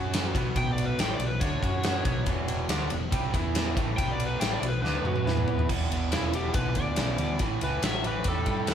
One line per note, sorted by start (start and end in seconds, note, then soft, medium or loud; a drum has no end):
0.00 0.32 F#2 loud
0.00 0.33 F#3 medium
0.00 0.33 C#4 medium
0.00 0.33 F#4 loud
0.14 snare loud
0.14 ride loud
0.34 0.54 B1 medium
0.34 0.54 B2 medium
0.34 0.55 F#3 loud
0.34 0.55 B3 loud
0.34 kick loud
0.34 ride medium
0.55 0.95 B1 medium
0.55 0.98 B2 medium
0.55 0.98 F#3 medium
0.55 0.98 B3 loud
0.55 0.70 G5 loud
0.55 kick medium
0.55 ride medium
0.72 0.85 D5 medium
0.78 ride medium
0.85 0.99 B4 medium
0.97 1.18 A1 medium
0.97 1.19 A2 medium
0.97 1.20 E3 medium
0.97 1.20 A3 medium
0.97 1.13 G5 medium
0.97 snare loud
0.97 ride medium
1.14 1.27 D5 medium
1.19 1.39 B1 medium
1.19 1.37 B2 medium
1.19 1.37 F#3 medium
1.19 ride medium
1.26 1.40 B4 medium
1.40 1.61 D2 medium
1.40 1.61 D3 loud
1.40 1.62 A3 loud
1.40 1.62 D4 loud
1.40 2.65 C#5 loud
1.40 kick loud
1.40 ride medium
1.61 2.02 F#2 medium
1.61 2.04 F#3 medium
1.61 2.05 C#4 medium
1.61 2.05 F#4 medium
1.61 kick medium
1.61 ride medium
1.83 snare loud
1.83 ride medium
2.04 2.25 B1 medium
2.04 2.26 B2 medium
2.04 2.26 F#3 medium
2.04 2.26 B3 loud
2.04 kick loud
2.04 ride medium
2.26 2.66 E1 medium
2.26 2.69 E2 medium
2.26 2.68 B2 medium
2.26 2.69 E3 loud
2.26 kick loud
2.26 ride medium
2.48 ride medium
2.68 2.89 D2 medium
2.68 2.90 D3 medium
2.68 2.90 A3 medium
2.68 2.90 D4 loud
2.68 snare loud
2.68 ride medium
2.90 3.10 E1 medium
2.90 3.08 E2 medium
2.90 3.08 B2 medium
2.90 ride medium
3.11 3.32 C2 medium
3.11 3.32 C3 medium
3.11 3.33 G3 loud
3.11 3.33 C4 loud
3.11 kick loud
3.11 ride medium
3.33 3.74 E2 medium
3.33 3.75 E3 medium
3.33 3.76 B3 loud
3.33 3.76 E4 loud
3.33 kick loud
3.33 ride medium
3.55 snare loud
3.55 ride loud
3.76 3.97 A1 medium
3.76 3.97 A2 loud
3.76 3.97 E3 medium
3.76 3.98 A3 loud
3.76 kick loud
3.76 ride medium
3.97 4.38 B1 medium
3.97 4.41 B2 medium
3.97 4.41 F#3 medium
3.97 4.41 B3 medium
3.97 4.11 G5 loud
3.97 kick medium
3.97 ride medium
4.11 4.26 D5 loud
4.20 ride medium
4.26 4.40 B4 medium
4.40 4.61 A1 medium
4.40 4.62 A2 loud
4.40 4.62 E3 medium
4.40 4.62 A3 medium
4.40 4.54 G5 medium
4.40 snare loud
4.40 ride loud
4.54 4.68 D5 medium
4.62 4.82 B1 medium
4.62 4.79 B2 medium
4.62 4.80 F#3 medium
4.62 ride medium
4.68 4.81 B4 medium
4.82 5.03 D2 medium
4.82 5.03 D3 medium
4.82 5.04 A3 medium
4.82 5.04 D4 loud
4.82 5.66 B4 loud
4.82 snare medium
4.95 high tom medium
5.04 5.24 F#2 medium
5.04 5.25 F#3 medium
5.04 5.25 C#4 medium
5.04 5.26 F#4 loud
5.04 mid tom medium
5.16 mid tom medium
5.25 5.65 E2 medium
5.25 5.68 E3 medium
5.25 5.68 B3 loud
5.25 5.68 E4 loud
5.25 snare medium
5.37 mid tom medium
5.48 floor tom loud
5.59 floor tom medium
5.69 5.88 E1 medium
5.69 5.88 E2 medium
5.69 5.88 B2 medium
5.69 kick medium
5.69 crash medium
5.89 6.09 G#1 medium
5.89 6.09 E2 medium
5.89 6.09 B2 medium
5.89 ride medium
6.12 6.49 E1 medium
6.12 6.31 E2 medium
6.12 6.31 C#3 medium
6.12 6.33 E4 medium
6.12 snare loud
6.12 ride medium
6.33 6.53 E2 medium
6.33 6.53 B2 medium
6.33 6.55 G4 medium
6.33 ride medium
6.54 6.73 B1 medium
6.54 6.74 E2 medium
6.54 6.74 D3 medium
6.54 6.75 B4 medium
6.54 kick loud
6.54 ride medium
6.75 6.94 D2 medium
6.75 6.95 E2 medium
6.75 6.96 D3 medium
6.75 7.39 D5 medium
6.75 kick medium
6.75 ride medium
6.96 7.16 B1 medium
6.96 7.17 E2 medium
6.96 7.17 C#3 medium
6.96 snare loud
6.96 ride loud
7.18 7.37 D2 medium
7.18 7.38 E2 medium
7.18 7.38 B2 medium
7.18 ride medium
7.39 7.59 A1 medium
7.39 7.59 A2 medium
7.39 7.60 E3 medium
7.39 kick loud
7.39 ride medium
7.61 7.80 C#2 medium
7.61 7.81 A2 medium
7.61 7.81 E3 medium
7.61 7.83 B4 medium
7.61 ride medium
7.82 8.20 A1 medium
7.82 8.03 A2 medium
7.82 8.03 F#3 medium
7.82 8.04 E5 medium
7.82 snare loud
7.82 ride medium
8.04 8.24 A2 medium
8.04 8.24 E3 medium
8.04 8.26 B4 medium
8.04 ride medium
8.24 8.44 E2 medium
8.24 8.44 A2 medium
8.24 8.45 G3 medium
8.24 kick loud
8.24 ride medium
8.28 8.74 A4 medium
8.46 8.65 G2 medium
8.46 8.65 A2 medium
8.46 8.66 G3 medium
8.46 kick medium
8.46 ride medium
8.67 8.74 E2 medium
8.67 8.74 A2 medium
8.67 8.74 F#3 medium
8.67 snare loud
8.67 ride medium